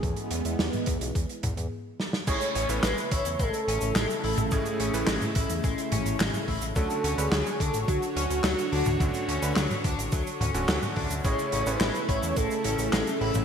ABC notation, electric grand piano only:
X:1
M:4/4
L:1/16
Q:1/4=107
K:A
V:1 name="Electric grand piano"
z16 | [A,,A,CEG]3 [A,,A,CEB] z12 | [A,,A,CEG]3 [A,,A,CEB] z12 | [D,A,CDF]3 [D,A,CDB] z12 |
[D,A,CDF]3 [D,A,CDB] z6 z [D,A,CDF]4- [D,A,CDF] | [A,,A,CEG]3 [A,,A,CEB] z12 |]